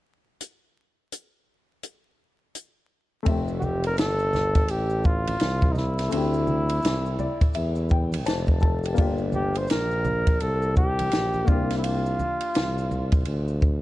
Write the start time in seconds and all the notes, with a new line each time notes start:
0.41 closed hi-hat
1.12 closed hi-hat
1.83 closed hi-hat
2.55 closed hi-hat
3.23 F1 A3 C4, kick, ride, maracas
3.28 G4 E5
3.48 maracas
3.59 F#4, high conga, low conga, maracas
3.63 G4
3.83 A#4, ride, maracas
3.97 G1 A4, snare, hi-hat pedal, ride, maracas
4.19 maracas
4.33 snare, low conga, maracas
4.55 kick, ride, maracas
4.68 A1 G4, ride, maracas
4.90 maracas
5.04 F4, kick, maracas
5.27 ride, high conga, maracas
5.40 C2, snare, hi-hat pedal, ride, maracas
5.61 kick, high conga, maracas
5.72 D#4, low conga, maracas
5.77 E4, snare
5.98 snare, ride, maracas
6.09 D2 A3 C4 E4, ride, maracas
6.13 E4 G4
6.33 maracas
6.47 high conga, low conga, maracas
6.69 ride, maracas
6.82 C2, snare, hi-hat pedal, ride, maracas
7.06 maracas
7.19 D5, low conga, maracas
7.41 kick, ride, maracas
7.54 E2 E5, ride, maracas
7.75 maracas
7.89 G5, kick, maracas
8.12 ride, high conga, maracas
8.25 F1 C5 A5, snare, hi-hat pedal, ride, maracas
8.47 kick, high conga, maracas
8.60 A4 A5, kick, low conga, maracas
8.84 G4, ride, maracas
8.94 A#3 D4, ride, maracas
8.98 G1 F4 G4, kick
9.18 maracas
9.32 G4, high conga, low conga, maracas
9.54 C5, ride, maracas
9.67 A#1 A#4, snare, hi-hat pedal, ride, maracas
9.91 maracas
10.05 low conga, maracas
10.27 kick, ride, maracas
10.40 C2 A4, ride, maracas
10.62 maracas
10.76 G4, kick, maracas
10.99 ride, high conga, maracas
11.12 A#1, snare, hi-hat pedal, ride, maracas
11.34 high conga, maracas
11.44 C2 A#3 D4 F4, kick, low conga, maracas
11.49 F4 G4
11.70 snare, ride, maracas
11.78 E4
11.83 F4, ride, maracas
12.06 maracas
12.19 high conga, low conga, maracas
12.41 ride, maracas
12.54 C2, snare, hi-hat pedal, ride, maracas
12.78 maracas
12.91 low conga, maracas
13.12 kick, ride, maracas
13.25 D2, ride, maracas
13.48 maracas
13.62 kick, maracas